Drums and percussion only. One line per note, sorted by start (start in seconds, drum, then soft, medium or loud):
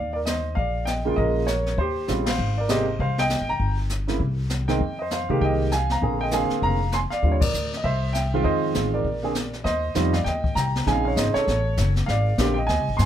0.26 snare medium
0.26 hi-hat pedal medium
0.57 brush sweep soft
0.57 kick soft
0.87 snare soft
0.87 hi-hat pedal soft
1.18 brush sweep soft
1.18 kick soft
1.47 snare medium
1.47 hi-hat pedal soft
1.66 snare soft
1.78 brush sweep soft
1.78 kick soft
2.08 snare soft
2.08 hi-hat pedal soft
2.26 snare medium
2.26 ride medium
2.38 brush sweep soft
2.69 snare medium
2.69 hi-hat pedal medium
2.99 brush sweep soft
2.99 kick soft
3.18 snare soft
3.29 snare soft
3.29 hi-hat pedal soft
3.60 brush sweep soft
3.60 kick soft
3.89 snare soft
3.89 hi-hat pedal medium
4.08 snare soft
4.20 brush sweep soft
4.20 kick soft
4.49 snare soft
4.49 hi-hat pedal soft
4.68 snare soft
4.80 brush sweep soft
4.80 kick soft
5.11 snare medium
5.11 hi-hat pedal soft
5.41 brush sweep soft
5.41 kick soft
5.71 snare soft
5.71 hi-hat pedal soft
5.90 snare soft
6.02 brush sweep soft
6.02 kick soft
6.31 snare medium
6.31 hi-hat pedal medium
6.50 snare soft
6.62 brush sweep medium
6.62 kick soft
6.92 snare soft
6.92 hi-hat pedal soft
7.11 snare soft
7.23 brush sweep soft
7.23 kick soft
7.42 kick medium
7.42 ride medium
7.54 hi-hat pedal medium
7.73 snare soft
7.84 brush sweep soft
7.84 kick soft
8.14 snare soft
8.14 hi-hat pedal soft
8.45 brush sweep soft
8.45 kick soft
8.74 snare soft
8.74 hi-hat pedal medium
9.04 brush sweep medium
9.04 kick soft
9.35 snare soft
9.35 hi-hat pedal soft
9.53 snare soft
9.65 brush sweep soft
9.65 kick soft
9.65 snare soft
9.95 kick soft
9.95 snare medium
9.95 hi-hat pedal medium
10.14 snare medium
10.26 brush sweep soft
10.26 kick soft
10.26 snare soft
10.44 kick medium
10.56 kick soft
10.56 snare soft
10.56 hi-hat pedal soft
10.75 snare soft
10.86 brush sweep soft
10.86 kick soft
10.86 snare soft
11.17 kick soft
11.17 snare soft
11.17 hi-hat pedal medium
11.35 snare soft
11.47 brush sweep soft
11.47 kick soft
11.47 snare soft
11.77 kick soft
11.77 snare medium
11.77 hi-hat pedal soft
11.96 snare soft
12.08 brush sweep soft
12.08 kick soft
12.08 snare soft
12.38 kick soft
12.38 snare medium
12.38 hi-hat pedal medium
12.69 brush sweep soft
12.69 kick soft
12.69 snare soft
12.99 kick soft
12.99 snare soft
12.99 hi-hat pedal medium